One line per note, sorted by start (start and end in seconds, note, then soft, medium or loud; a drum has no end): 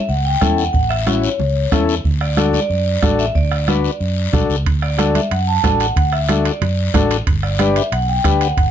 0.09 0.35 C#2 medium
0.09 0.16 F#5 medium
0.09 long guiro medium
0.25 0.55 G5 loud
0.41 0.67 E2 medium
0.41 0.64 C#4 medium
0.41 0.64 E4 medium
0.41 0.64 A4 medium
0.41 bombo low medium
0.41 bombo rim medium
0.41 high conga medium
0.41 short guiro medium
0.57 0.64 F#5 medium
0.57 short guiro medium
0.73 1.26 A1 medium
0.73 0.90 F#5 medium
0.73 bombo low medium
0.73 long guiro medium
0.89 1.20 E5 medium
0.89 bombo rim medium
1.07 1.29 C#4 medium
1.07 1.30 E4 medium
1.07 1.30 F#4 medium
1.07 bombo rim medium
1.07 high conga medium
1.07 short guiro medium
1.22 1.84 C#5 medium
1.22 short guiro medium
1.39 1.65 C#2 medium
1.39 low conga medium
1.39 long guiro medium
1.72 1.98 E2 medium
1.72 1.95 C#4 medium
1.72 1.95 E4 medium
1.72 1.95 A4 medium
1.72 bombo low medium
1.72 bombo rim medium
1.72 high conga medium
1.72 low conga medium
1.72 short guiro medium
1.89 short guiro medium
2.04 2.57 D2 medium
2.04 bombo low medium
2.04 long guiro medium
2.21 2.51 D5 medium
2.21 bombo rim medium
2.37 2.60 D4 medium
2.37 2.60 F#4 medium
2.37 2.60 A4 medium
2.37 bombo rim medium
2.37 high conga medium
2.37 short guiro medium
2.53 3.15 D5 medium
2.53 high conga medium
2.53 short guiro medium
2.70 2.96 F#2 medium
2.70 long guiro medium
3.02 3.29 A1 medium
3.02 3.25 D4 medium
3.02 3.26 F#4 medium
3.02 3.26 A4 medium
3.02 bombo low medium
3.02 bombo rim medium
3.02 high conga medium
3.02 short guiro medium
3.19 3.26 E5 medium
3.19 short guiro medium
3.35 3.87 D2 medium
3.35 4.46 D5 medium
3.35 bombo low medium
3.35 long guiro medium
3.52 bombo rim medium
3.68 3.91 D4 medium
3.68 3.91 F#4 medium
3.68 3.91 B4 medium
3.68 bombo rim medium
3.68 high conga medium
3.68 short guiro medium
3.84 short guiro medium
4.00 4.27 F#2 medium
4.00 long guiro medium
4.33 4.48 B1 medium
4.33 4.56 D4 medium
4.33 4.56 F#4 medium
4.33 4.56 A4 medium
4.33 bombo low medium
4.33 bombo rim medium
4.33 high conga medium
4.33 low conga medium
4.33 short guiro medium
4.50 4.64 C#2 medium
4.50 short guiro medium
4.66 5.18 D2 medium
4.66 bombo low medium
4.66 high timbale medium
4.66 long guiro medium
4.82 4.97 D5 medium
4.82 bombo rim medium
4.98 5.21 D4 medium
4.98 5.21 F#4 medium
4.98 5.21 A4 medium
4.98 5.15 D5 medium
4.98 bombo rim medium
4.98 high conga medium
4.98 high timbale medium
4.98 short guiro medium
5.15 5.32 E5 medium
5.15 high conga medium
5.15 high timbale medium
5.15 short guiro medium
5.31 5.57 F#2 medium
5.31 5.48 F#5 medium
5.31 high timbale medium
5.31 long guiro medium
5.48 5.81 A5 loud
5.63 5.90 A1 medium
5.63 5.86 D4 medium
5.63 5.87 F#4 medium
5.63 5.87 A4 medium
5.63 bombo low medium
5.63 bombo rim medium
5.63 high conga medium
5.63 high timbale medium
5.63 low timbale medium
5.63 short guiro medium
5.80 5.95 F#5 medium
5.80 high timbale medium
5.80 short guiro medium
5.96 6.49 D2 medium
5.96 6.04 F#5 loud
5.96 bombo low medium
5.96 high timbale medium
5.96 long guiro medium
6.12 6.43 E5 medium
6.12 bombo rim medium
6.29 6.52 D4 medium
6.29 6.52 F#4 medium
6.29 6.52 A4 medium
6.29 bombo rim medium
6.29 high conga medium
6.29 high timbale medium
6.29 short guiro medium
6.45 7.07 D5 medium
6.45 high timbale medium
6.45 short guiro medium
6.62 6.88 F#2 medium
6.62 low conga medium
6.62 high timbale medium
6.62 long guiro medium
6.94 7.20 A1 medium
6.94 7.17 D4 medium
6.94 7.17 F#4 medium
6.94 7.17 A4 medium
6.94 bombo low medium
6.94 bombo rim medium
6.94 high conga medium
6.94 low conga medium
6.94 high timbale medium
6.94 low timbale medium
6.94 short guiro medium
7.11 high timbale medium
7.11 short guiro medium
7.27 7.79 G1 medium
7.27 bombo low medium
7.27 high timbale medium
7.27 long guiro medium
7.43 7.59 D5 medium
7.43 bombo rim medium
7.59 7.82 D4 medium
7.59 7.82 G4 medium
7.59 7.83 B4 medium
7.59 7.67 D5 medium
7.59 bombo rim medium
7.59 high conga medium
7.59 high timbale medium
7.59 short guiro medium
7.76 7.91 E5 medium
7.76 high timbale medium
7.76 short guiro medium
7.92 8.18 B1 medium
7.92 8.07 F#5 medium
7.92 high timbale medium
7.92 long guiro medium
8.08 8.39 G5 loud
8.24 8.51 D2 medium
8.24 8.47 D4 medium
8.24 8.48 G4 medium
8.24 8.48 B4 medium
8.24 bombo low medium
8.24 bombo rim medium
8.24 high conga medium
8.24 high timbale medium
8.24 short guiro medium
8.41 8.48 F#5 medium
8.41 high timbale medium
8.41 short guiro medium
8.57 8.71 G1 medium
8.57 8.65 F#5 medium
8.57 bombo low medium
8.57 high timbale medium
8.57 long guiro medium